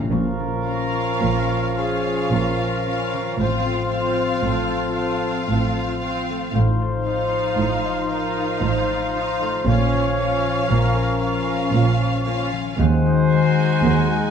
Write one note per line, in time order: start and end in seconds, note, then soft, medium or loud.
0.00 0.11 A#2 soft
0.00 0.65 C#4 soft
0.00 1.21 A#4 soft
0.00 1.48 C#5 soft
0.00 2.85 F5 soft
0.10 1.07 A#1 medium
0.10 1.07 A#2 medium
0.10 3.44 A#2 soft
0.10 3.35 F3 medium
0.10 3.36 F3 soft
0.10 3.35 C#4 soft
0.10 3.36 F4 soft
0.10 1.73 A#4 medium
0.10 3.36 F5 soft
0.10 3.36 C#6 soft
0.40 3.13 F3 soft
0.67 1.75 C#4 soft
0.67 2.85 C#4 soft
0.67 1.75 F4 soft
0.67 1.75 F5 soft
0.95 2.59 F4 soft
1.22 2.17 A#1 medium
1.22 2.17 A#2 medium
1.22 1.77 A#4 soft
1.50 2.04 C#5 soft
1.77 2.84 C#4 soft
1.77 2.84 F4 soft
1.77 2.32 G#4 medium
1.77 2.30 A#4 soft
1.77 2.85 F5 soft
2.05 3.44 C#5 soft
2.31 3.25 A#1 medium
2.31 3.25 A#2 soft
2.31 3.43 A#4 soft
2.31 3.40 A#4 medium
2.60 4.17 F4 soft
2.86 3.44 C#4 soft
2.86 3.39 C#4 soft
2.86 3.39 F4 soft
2.86 3.39 F5 soft
3.14 7.04 F3 soft
3.39 4.28 A1 medium
3.39 4.28 A2 medium
3.39 6.54 A2 soft
3.39 6.49 F3 soft
3.39 6.23 F3 medium
3.39 6.50 C4 soft
3.39 3.90 C4 soft
3.39 6.23 F4 soft
3.39 3.90 F4 soft
3.39 4.42 C5 medium
3.39 6.23 F5 soft
3.39 3.89 F5 soft
3.39 6.23 C6 soft
3.66 6.28 A3 soft
3.91 4.94 C4 soft
3.91 6.01 C4 soft
3.91 4.93 F4 soft
3.91 4.93 F5 soft
4.18 4.69 F4 soft
4.42 5.34 A1 medium
4.42 5.34 A2 medium
4.42 5.99 A4 medium
4.42 4.95 C5 soft
4.70 5.23 F4 soft
4.95 5.99 C4 soft
4.95 5.99 F4 soft
4.95 5.48 C5 soft
4.95 6.00 F5 soft
5.24 5.75 F4 soft
5.48 6.39 A1 medium
5.48 6.39 A2 medium
5.48 7.58 C5 soft
5.76 7.32 F4 soft
6.01 6.53 C4 soft
6.01 9.71 C4 soft
6.01 6.53 F4 soft
6.01 6.53 F5 soft
6.30 6.80 A3 soft
6.53 7.44 A1 medium
6.53 7.44 A2 medium
6.53 9.71 A2 soft
6.53 9.49 F3 soft
6.53 9.63 F3 soft
6.53 9.49 D#4 soft
6.53 9.69 D#4 medium
6.53 8.07 C5 medium
6.53 9.62 F5 medium
6.53 9.63 C6 soft
6.81 9.39 A3 soft
7.06 9.14 D#4 soft
7.06 8.09 D#4 soft
7.06 8.09 F4 soft
7.06 8.09 F5 soft
7.33 8.87 F4 soft
7.58 8.48 A1 medium
7.58 8.48 A2 medium
7.58 8.10 C5 soft
7.85 8.37 D#5 soft
8.10 9.12 D#4 soft
8.10 9.13 F4 soft
8.10 8.63 A#4 medium
8.10 8.62 C5 soft
8.10 9.13 F5 soft
8.38 9.71 D#5 soft
8.62 9.52 A1 medium
8.62 9.52 A2 medium
8.62 9.67 C5 medium
8.62 9.71 C5 soft
8.88 10.43 F4 soft
9.14 9.65 D#4 soft
9.14 9.71 D#4 soft
9.14 9.66 F4 soft
9.14 9.66 F5 soft
9.41 9.71 A3 soft
9.66 10.55 A#1 medium
9.66 12.83 A#2 soft
9.66 10.56 A#2 medium
9.66 12.75 F3 medium
9.66 12.48 F3 medium
9.66 10.17 C#4 soft
9.66 12.75 C#4 medium
9.66 12.52 C#4 medium
9.66 10.18 F4 soft
9.66 10.70 C#5 medium
9.66 12.48 F5 medium
9.66 10.17 F5 soft
9.66 12.48 C#6 soft
9.93 12.51 F3 soft
10.18 12.25 A#3 soft
10.18 11.19 C#4 soft
10.18 11.19 F4 soft
10.18 11.19 F5 soft
10.44 11.99 F4 soft
10.69 11.59 A#1 medium
10.69 11.59 A#2 medium
10.69 12.26 A#4 medium
10.69 11.19 C#5 soft
10.95 11.46 A#4 soft
11.20 12.24 C#4 soft
11.20 12.24 F4 soft
11.20 11.72 C#5 soft
11.20 12.24 F5 soft
11.47 12.83 A#4 soft
11.72 12.64 A#1 medium
11.72 12.64 A#2 medium
11.72 12.83 C#5 soft
12.00 12.84 F4 soft
12.25 12.83 A#3 soft
12.25 12.78 C#4 soft
12.25 12.78 F4 soft
12.25 12.78 F5 soft
12.52 12.83 F3 soft
12.78 13.69 D#2 medium
12.78 14.30 D#3 soft
12.78 14.30 G#3 medium
12.78 14.30 D#4 medium
12.78 14.30 F#4 medium
12.78 14.30 C5 medium
12.78 14.30 F#5 medium
12.78 14.30 G#5 soft
13.06 14.30 D#4 soft
13.32 14.30 G#3 soft
13.32 14.30 F#4 soft
13.32 14.30 G#5 soft
13.58 14.10 F#4 soft
13.83 14.30 D#2 medium
13.83 14.30 G#4 soft
14.11 14.30 F#4 soft